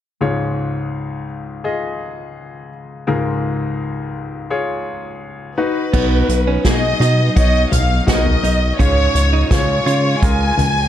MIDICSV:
0, 0, Header, 1, 7, 480
1, 0, Start_track
1, 0, Tempo, 715137
1, 145, Time_signature, 4, 2, 24, 8
1, 7303, End_track
2, 0, Start_track
2, 0, Title_t, "Violin section"
2, 0, Program_c, 0, 48
2, 3757, Note_on_c, 0, 71, 67
2, 4444, Note_off_c, 0, 71, 0
2, 4476, Note_on_c, 0, 75, 91
2, 4943, Note_off_c, 0, 75, 0
2, 4951, Note_on_c, 0, 75, 93
2, 5171, Note_off_c, 0, 75, 0
2, 5197, Note_on_c, 0, 77, 80
2, 5430, Note_off_c, 0, 77, 0
2, 5444, Note_on_c, 0, 75, 86
2, 5886, Note_off_c, 0, 75, 0
2, 5916, Note_on_c, 0, 73, 90
2, 6389, Note_off_c, 0, 73, 0
2, 6396, Note_on_c, 0, 73, 81
2, 6842, Note_off_c, 0, 73, 0
2, 6862, Note_on_c, 0, 80, 101
2, 7303, Note_off_c, 0, 80, 0
2, 7303, End_track
3, 0, Start_track
3, 0, Title_t, "Grand piano"
3, 0, Program_c, 1, 0
3, 139, Note_on_c, 1, 37, 48
3, 141, Note_on_c, 1, 65, 62
3, 142, Note_on_c, 1, 44, 54
3, 142, Note_on_c, 1, 68, 54
3, 145, Note_on_c, 1, 73, 63
3, 265, Control_c, 1, 64, 127
3, 843, Note_off_c, 1, 65, 0
3, 844, Note_off_c, 1, 68, 0
3, 846, Note_off_c, 1, 73, 0
3, 1102, Note_on_c, 1, 65, 54
3, 1102, Note_on_c, 1, 68, 53
3, 1106, Note_on_c, 1, 75, 61
3, 1804, Note_off_c, 1, 65, 0
3, 1804, Note_off_c, 1, 68, 0
3, 1806, Note_off_c, 1, 75, 0
3, 2035, Note_off_c, 1, 37, 0
3, 2036, Note_off_c, 1, 44, 0
3, 2061, Note_on_c, 1, 65, 64
3, 2063, Note_on_c, 1, 44, 61
3, 2063, Note_on_c, 1, 70, 73
3, 2065, Note_on_c, 1, 37, 52
3, 2065, Note_on_c, 1, 68, 55
3, 2763, Note_off_c, 1, 65, 0
3, 2764, Note_off_c, 1, 70, 0
3, 2765, Note_off_c, 1, 68, 0
3, 3023, Note_on_c, 1, 65, 63
3, 3024, Note_on_c, 1, 68, 60
3, 3026, Note_on_c, 1, 73, 64
3, 3717, Note_off_c, 1, 37, 0
3, 3717, Note_off_c, 1, 44, 0
3, 3724, Note_off_c, 1, 65, 0
3, 3724, Note_off_c, 1, 68, 0
3, 3726, Note_off_c, 1, 73, 0
3, 3743, Note_on_c, 1, 63, 67
3, 3743, Note_on_c, 1, 71, 77
3, 3745, Note_on_c, 1, 66, 58
3, 3752, Control_c, 1, 64, 0
3, 3842, Control_c, 1, 64, 127
3, 3935, Note_off_c, 1, 71, 0
3, 3936, Note_off_c, 1, 63, 0
3, 3937, Note_off_c, 1, 66, 0
3, 3986, Note_on_c, 1, 63, 73
3, 3986, Note_on_c, 1, 66, 63
3, 3988, Note_on_c, 1, 71, 79
3, 3993, Control_c, 1, 64, 0
3, 4094, Control_c, 1, 64, 127
3, 4335, Note_off_c, 1, 63, 0
3, 4335, Note_off_c, 1, 66, 0
3, 4336, Note_off_c, 1, 71, 0
3, 4465, Note_on_c, 1, 63, 67
3, 4465, Note_on_c, 1, 68, 80
3, 4467, Note_on_c, 1, 66, 57
3, 4815, Note_off_c, 1, 63, 0
3, 4815, Note_off_c, 1, 66, 0
3, 4815, Note_off_c, 1, 68, 0
3, 4939, Note_on_c, 1, 63, 67
3, 4939, Note_on_c, 1, 66, 60
3, 4940, Note_on_c, 1, 73, 72
3, 5291, Note_off_c, 1, 63, 0
3, 5291, Note_off_c, 1, 66, 0
3, 5292, Note_off_c, 1, 73, 0
3, 5414, Note_on_c, 1, 63, 71
3, 5417, Note_on_c, 1, 66, 67
3, 5419, Note_on_c, 1, 68, 57
3, 5462, Note_on_c, 1, 70, 79
3, 5465, Note_off_c, 1, 68, 0
3, 5769, Note_off_c, 1, 63, 0
3, 5770, Note_off_c, 1, 66, 0
3, 5792, Note_off_c, 1, 70, 0
3, 5902, Note_on_c, 1, 65, 71
3, 5902, Note_on_c, 1, 68, 61
3, 5903, Note_on_c, 1, 73, 83
3, 5906, Note_on_c, 1, 44, 60
3, 5912, Control_c, 1, 64, 0
3, 6027, Control_c, 1, 64, 127
3, 6252, Note_off_c, 1, 65, 0
3, 6252, Note_off_c, 1, 68, 0
3, 6253, Note_off_c, 1, 73, 0
3, 6380, Note_on_c, 1, 68, 68
3, 6381, Note_on_c, 1, 65, 72
3, 6383, Note_on_c, 1, 73, 81
3, 6597, Note_off_c, 1, 44, 0
3, 6731, Note_off_c, 1, 68, 0
3, 6732, Note_off_c, 1, 65, 0
3, 6733, Note_off_c, 1, 73, 0
3, 6863, Note_on_c, 1, 68, 58
3, 6864, Note_on_c, 1, 65, 65
3, 6867, Note_on_c, 1, 70, 75
3, 7212, Note_off_c, 1, 65, 0
3, 7212, Note_off_c, 1, 68, 0
3, 7214, Note_off_c, 1, 70, 0
3, 7303, End_track
4, 0, Start_track
4, 0, Title_t, "Clean electric guitar"
4, 0, Program_c, 2, 27
4, 3983, Note_on_c, 2, 59, 74
4, 4212, Note_off_c, 2, 59, 0
4, 4346, Note_on_c, 2, 61, 69
4, 4459, Note_off_c, 2, 61, 0
4, 4706, Note_on_c, 2, 63, 81
4, 5158, Note_off_c, 2, 63, 0
4, 5432, Note_on_c, 2, 66, 82
4, 5542, Note_off_c, 2, 66, 0
4, 5663, Note_on_c, 2, 63, 65
4, 5777, Note_off_c, 2, 63, 0
4, 5900, Note_on_c, 2, 61, 69
4, 6129, Note_off_c, 2, 61, 0
4, 6263, Note_on_c, 2, 63, 71
4, 6377, Note_off_c, 2, 63, 0
4, 6621, Note_on_c, 2, 65, 74
4, 7074, Note_off_c, 2, 65, 0
4, 7303, End_track
5, 0, Start_track
5, 0, Title_t, "String section"
5, 0, Program_c, 3, 48
5, 3987, Note_on_c, 3, 59, 72
5, 3989, Note_on_c, 3, 54, 73
5, 3989, Note_on_c, 3, 63, 80
5, 5885, Note_off_c, 3, 59, 0
5, 5886, Note_off_c, 3, 54, 0
5, 5886, Note_off_c, 3, 63, 0
5, 5901, Note_on_c, 3, 49, 72
5, 5903, Note_on_c, 3, 65, 81
5, 5905, Note_on_c, 3, 56, 70
5, 7303, Note_off_c, 3, 49, 0
5, 7303, Note_off_c, 3, 56, 0
5, 7303, Note_off_c, 3, 65, 0
5, 7303, End_track
6, 0, Start_track
6, 0, Title_t, "Analog synth bass"
6, 0, Program_c, 4, 38
6, 3984, Note_on_c, 4, 35, 99
6, 4181, Note_off_c, 4, 35, 0
6, 4220, Note_on_c, 4, 35, 83
6, 4418, Note_off_c, 4, 35, 0
6, 4463, Note_on_c, 4, 35, 82
6, 4660, Note_off_c, 4, 35, 0
6, 4699, Note_on_c, 4, 47, 95
6, 4898, Note_off_c, 4, 47, 0
6, 4942, Note_on_c, 4, 35, 99
6, 5139, Note_off_c, 4, 35, 0
6, 5181, Note_on_c, 4, 35, 99
6, 5378, Note_off_c, 4, 35, 0
6, 5422, Note_on_c, 4, 35, 110
6, 5619, Note_off_c, 4, 35, 0
6, 5661, Note_on_c, 4, 35, 89
6, 5858, Note_off_c, 4, 35, 0
6, 5902, Note_on_c, 4, 37, 99
6, 6099, Note_off_c, 4, 37, 0
6, 6139, Note_on_c, 4, 37, 82
6, 6337, Note_off_c, 4, 37, 0
6, 6382, Note_on_c, 4, 37, 93
6, 6579, Note_off_c, 4, 37, 0
6, 6619, Note_on_c, 4, 49, 100
6, 6817, Note_off_c, 4, 49, 0
6, 6863, Note_on_c, 4, 37, 93
6, 7059, Note_off_c, 4, 37, 0
6, 7098, Note_on_c, 4, 37, 100
6, 7296, Note_off_c, 4, 37, 0
6, 7303, End_track
7, 0, Start_track
7, 0, Title_t, "Drums"
7, 3984, Note_on_c, 9, 36, 94
7, 3985, Note_on_c, 9, 49, 82
7, 4051, Note_off_c, 9, 36, 0
7, 4052, Note_off_c, 9, 49, 0
7, 4224, Note_on_c, 9, 42, 69
7, 4292, Note_off_c, 9, 42, 0
7, 4462, Note_on_c, 9, 38, 104
7, 4463, Note_on_c, 9, 36, 93
7, 4463, Note_on_c, 9, 42, 88
7, 4529, Note_off_c, 9, 38, 0
7, 4530, Note_off_c, 9, 36, 0
7, 4530, Note_off_c, 9, 42, 0
7, 4710, Note_on_c, 9, 42, 68
7, 4777, Note_off_c, 9, 42, 0
7, 4943, Note_on_c, 9, 42, 83
7, 4944, Note_on_c, 9, 36, 99
7, 5010, Note_off_c, 9, 42, 0
7, 5011, Note_off_c, 9, 36, 0
7, 5182, Note_on_c, 9, 43, 66
7, 5185, Note_on_c, 9, 42, 74
7, 5249, Note_off_c, 9, 43, 0
7, 5252, Note_off_c, 9, 42, 0
7, 5422, Note_on_c, 9, 36, 99
7, 5423, Note_on_c, 9, 42, 75
7, 5424, Note_on_c, 9, 38, 94
7, 5489, Note_off_c, 9, 36, 0
7, 5490, Note_off_c, 9, 42, 0
7, 5491, Note_off_c, 9, 38, 0
7, 5545, Note_on_c, 9, 43, 57
7, 5612, Note_off_c, 9, 43, 0
7, 5666, Note_on_c, 9, 42, 67
7, 5733, Note_off_c, 9, 42, 0
7, 5904, Note_on_c, 9, 36, 98
7, 5907, Note_on_c, 9, 42, 77
7, 5971, Note_off_c, 9, 36, 0
7, 5974, Note_off_c, 9, 42, 0
7, 6144, Note_on_c, 9, 42, 71
7, 6211, Note_off_c, 9, 42, 0
7, 6383, Note_on_c, 9, 36, 102
7, 6384, Note_on_c, 9, 38, 95
7, 6386, Note_on_c, 9, 42, 95
7, 6450, Note_off_c, 9, 36, 0
7, 6452, Note_off_c, 9, 38, 0
7, 6453, Note_off_c, 9, 42, 0
7, 6627, Note_on_c, 9, 42, 65
7, 6694, Note_off_c, 9, 42, 0
7, 6862, Note_on_c, 9, 42, 83
7, 6863, Note_on_c, 9, 36, 102
7, 6930, Note_off_c, 9, 42, 0
7, 6931, Note_off_c, 9, 36, 0
7, 7105, Note_on_c, 9, 43, 68
7, 7108, Note_on_c, 9, 42, 73
7, 7172, Note_off_c, 9, 43, 0
7, 7175, Note_off_c, 9, 42, 0
7, 7303, End_track
0, 0, End_of_file